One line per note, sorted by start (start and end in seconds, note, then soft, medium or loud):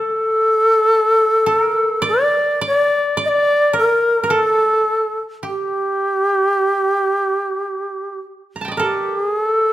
0.00 1.46 A4 medium
0.00 2.01 A4 medium
1.46 1.59 A4 medium
1.59 3.30 A#4 medium
2.02 2.61 D5 medium
2.08 2.60 D5 medium
2.61 3.17 D5 medium
2.67 3.17 D5 medium
3.17 4.77 D5 medium
3.25 3.74 D5 medium
3.25 3.30 D#5 medium
3.73 4.23 A#4 medium
3.78 4.26 A#4 medium
4.24 4.36 A#4 medium
4.30 6.20 A4 medium
4.34 5.19 A4 medium
5.43 8.16 G4 soft
5.43 8.18 G4 medium
8.56 8.85 A#5 soft
8.61 9.73 G5 soft
8.61 8.83 A5 soft
8.68 9.73 D5 soft
8.68 9.73 D#5 soft
8.77 9.20 G4 medium
8.77 9.73 A4 medium
8.77 9.73 A#4 soft
9.20 9.45 G#4 medium
9.45 9.73 A4 medium